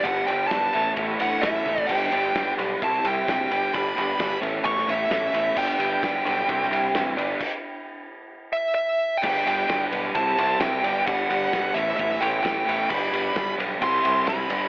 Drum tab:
CC |----------------|x---------------|----------------|x---------------|
RD |x-x-x-x-x-x-x---|--x-x-x-x-x-x-x-|x-x-x-x-x-x-x-x-|--x-x-x-x-x-x-x-|
SD |----o-------o---|----o-------o---|----o----o--o---|----o----o--o---|
T1 |--------------o-|----------------|----------------|----------------|
BD |o---o---o---o--o|o---o---o---o---|o---o---o---o---|o---o---o---o---|

CC |x---------------|x---------------|----------------|x---------------|
RD |----------------|--x-x-x-x-x-x-x-|x-x-x-x-x-x-x-x-|--x-x-x-x-x-x-x-|
SD |----------------|----o-------o---|----o----o--o---|----o-------o---|
T1 |----------------|----------------|----------------|----------------|
BD |o---------------|o---o---o---o---|o---o---o---o---|o---o---o---o---|